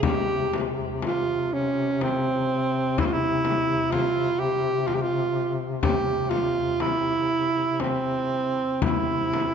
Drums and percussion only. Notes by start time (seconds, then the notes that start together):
0.03 frame drum
0.54 frame drum
1.02 frame drum
2.01 frame drum
2.98 frame drum
3.45 frame drum
3.92 frame drum
4.88 frame drum
5.83 frame drum
6.31 frame drum
6.80 frame drum
7.80 frame drum
8.82 frame drum
9.34 frame drum